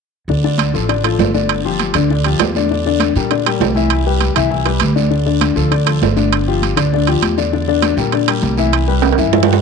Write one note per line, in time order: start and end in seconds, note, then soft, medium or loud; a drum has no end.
0.28 0.70 D2 medium
0.28 0.42 D3 medium
0.28 0.42 D4 medium
0.28 0.42 D5 medium
0.28 high conga soft
0.28 long guiro medium
0.44 0.69 D3 medium
0.44 0.69 D4 medium
0.44 0.69 D5 medium
0.44 high conga soft
0.58 high conga medium
0.58 high timbale medium
0.58 short guiro medium
0.74 1.16 A1 medium
0.74 0.86 F3 medium
0.74 0.86 F4 medium
0.74 0.87 A4 medium
0.74 high conga soft
0.74 short guiro medium
0.89 1.01 D3 medium
0.89 1.01 D4 medium
0.89 1.02 D5 medium
0.89 high conga soft
0.89 high timbale medium
0.89 long guiro medium
1.04 1.29 F3 medium
1.04 1.29 F4 medium
1.04 1.29 A4 medium
1.04 high conga soft
1.04 high timbale medium
1.19 1.89 G1 medium
1.19 high conga medium
1.19 low timbale medium
1.19 short guiro medium
1.34 1.59 D3 medium
1.34 1.59 D4 medium
1.34 1.60 D5 medium
1.34 high conga medium
1.34 short guiro medium
1.49 high conga soft
1.49 high timbale medium
1.49 long guiro medium
1.65 1.89 F3 medium
1.65 1.90 F4 medium
1.65 1.90 G4 medium
1.65 high conga soft
1.79 high conga medium
1.79 high timbale medium
1.79 short guiro medium
1.94 2.37 D2 medium
1.94 2.07 D3 medium
1.94 2.07 D4 medium
1.94 2.08 D5 medium
1.94 high conga soft
1.94 high timbale medium
1.94 short guiro medium
2.10 2.22 D3 medium
2.10 2.23 D4 medium
2.10 2.23 D5 medium
2.10 high conga soft
2.10 long guiro medium
2.24 2.50 F3 medium
2.24 2.50 F4 medium
2.24 2.50 G4 medium
2.24 high conga soft
2.24 high timbale medium
2.40 3.10 E2 medium
2.40 high conga medium
2.40 high timbale medium
2.40 low timbale medium
2.40 short guiro medium
2.55 2.68 D3 medium
2.55 2.68 D4 medium
2.55 2.68 D5 medium
2.55 high conga medium
2.55 short guiro medium
2.69 2.83 D3 medium
2.69 2.83 D4 medium
2.69 2.83 D5 medium
2.69 high conga soft
2.69 long guiro medium
2.85 3.10 D3 medium
2.85 3.11 D4 medium
2.85 3.11 D5 medium
2.85 high conga soft
3.00 high conga medium
3.00 high timbale medium
3.00 short guiro medium
3.16 3.58 A#2 medium
3.16 3.28 G3 medium
3.16 3.29 G4 medium
3.16 3.29 A#4 medium
3.16 high conga soft
3.16 short guiro medium
3.30 3.43 D3 medium
3.30 3.43 D4 medium
3.30 3.43 D5 medium
3.30 high conga soft
3.30 high timbale medium
3.30 long guiro medium
3.45 3.70 G3 medium
3.45 3.71 G4 medium
3.45 3.71 A#4 medium
3.45 high conga soft
3.45 high timbale medium
3.60 4.30 C2 medium
3.60 high conga medium
3.60 low timbale medium
3.60 short guiro medium
3.75 4.00 E3 medium
3.75 4.00 E4 medium
3.75 4.00 E5 medium
3.75 high conga medium
3.75 short guiro medium
3.90 high conga soft
3.90 high timbale medium
3.90 long guiro medium
4.06 4.31 G3 medium
4.06 4.31 G4 medium
4.06 4.31 B4 medium
4.06 high conga soft
4.21 high conga medium
4.21 high timbale medium
4.21 short guiro medium
4.35 4.78 C2 medium
4.35 4.48 E3 medium
4.35 4.48 E4 medium
4.35 4.49 E5 medium
4.35 high conga soft
4.35 high timbale medium
4.35 short guiro medium
4.51 4.63 E3 medium
4.51 4.63 E4 medium
4.51 4.63 E5 medium
4.51 high conga soft
4.51 long guiro medium
4.65 4.90 G3 medium
4.65 4.91 G4 medium
4.65 4.91 B4 medium
4.65 high conga soft
4.65 high timbale medium
4.80 5.51 D2 medium
4.80 high conga medium
4.80 high timbale medium
4.80 short guiro medium
4.96 5.08 D3 medium
4.96 5.08 D4 medium
4.96 5.08 D5 medium
4.96 high conga medium
4.96 short guiro medium
5.10 5.23 D3 medium
5.10 5.23 D4 medium
5.10 5.23 D5 medium
5.10 high conga soft
5.10 long guiro medium
5.25 5.51 D3 medium
5.25 5.51 D4 medium
5.25 5.51 D5 medium
5.25 high conga soft
5.41 high conga medium
5.41 high timbale medium
5.41 short guiro medium
5.56 5.98 D2 medium
5.56 5.68 F3 medium
5.56 5.68 F4 medium
5.56 5.69 A4 medium
5.56 short guiro medium
5.71 5.84 D3 medium
5.71 5.84 D4 medium
5.71 5.84 D5 medium
5.71 high conga soft
5.71 high timbale medium
5.71 long guiro medium
5.86 6.11 F3 medium
5.86 6.11 F4 medium
5.86 6.11 A4 medium
5.86 high conga soft
5.86 high timbale medium
6.02 6.72 G1 medium
6.02 high conga medium
6.02 low timbale medium
6.02 short guiro medium
6.16 6.41 D3 medium
6.16 6.41 D4 medium
6.16 6.42 D5 medium
6.16 high conga medium
6.16 short guiro medium
6.32 high conga soft
6.32 high timbale medium
6.32 long guiro medium
6.47 6.72 F3 medium
6.47 6.72 F4 medium
6.47 6.72 G4 medium
6.47 high conga soft
6.62 high conga medium
6.62 high timbale medium
6.62 short guiro medium
6.77 7.19 D2 medium
6.77 6.89 D3 medium
6.77 6.90 D4 medium
6.77 6.90 D5 medium
6.77 high conga soft
6.77 high timbale medium
6.77 short guiro medium
6.92 7.05 D3 medium
6.92 7.05 D4 medium
6.92 7.05 D5 medium
6.92 high conga soft
6.92 long guiro medium
7.07 7.32 F3 medium
7.07 7.32 F4 medium
7.07 7.33 G4 medium
7.07 high conga soft
7.07 high timbale medium
7.22 7.92 E2 medium
7.22 high conga medium
7.22 high timbale medium
7.22 short guiro medium
7.37 7.50 D3 medium
7.37 7.50 D4 medium
7.37 7.50 D5 medium
7.37 short guiro medium
7.53 7.65 D3 medium
7.53 7.65 D4 medium
7.53 7.65 D5 medium
7.53 high conga soft
7.53 long guiro medium
7.68 7.92 D3 medium
7.68 7.93 D4 medium
7.68 7.93 D5 medium
7.68 high conga soft
7.82 high conga medium
7.82 high timbale medium
7.82 short guiro medium
7.97 8.39 A#2 medium
7.97 8.10 G3 medium
7.97 8.10 G4 medium
7.97 8.11 A#4 medium
7.97 high conga soft
7.97 short guiro medium
8.12 8.25 D3 medium
8.12 8.25 D4 medium
8.12 8.26 D5 medium
8.12 high conga soft
8.12 high timbale medium
8.12 long guiro medium
8.28 8.52 G3 medium
8.28 8.52 G4 medium
8.28 8.53 A#4 medium
8.28 high conga soft
8.28 high timbale medium
8.42 9.12 C2 medium
8.42 high conga medium
8.42 short guiro medium
8.57 8.82 E3 medium
8.57 8.83 E4 medium
8.57 8.83 E5 medium
8.57 high conga medium
8.57 short guiro medium
8.73 high conga soft
8.73 high timbale medium
8.73 long guiro medium
8.87 9.12 G3 medium
8.87 9.13 G4 medium
8.87 9.13 B4 medium
8.87 high conga soft
9.02 high conga medium
9.02 high timbale medium
9.02 short guiro medium
9.13 high timbale medium
9.18 9.60 G2 medium
9.18 9.30 E3 medium
9.18 9.30 E4 medium
9.18 9.31 E5 medium
9.18 high conga soft
9.18 short guiro medium
9.33 9.46 E3 medium
9.33 9.46 E4 medium
9.33 9.46 E5 medium
9.33 high conga soft
9.33 low timbale medium
9.33 long guiro medium
9.43 low timbale loud
9.47 9.62 G3 medium
9.47 9.62 G4 medium
9.47 9.62 B4 medium
9.47 high conga soft
9.53 low timbale medium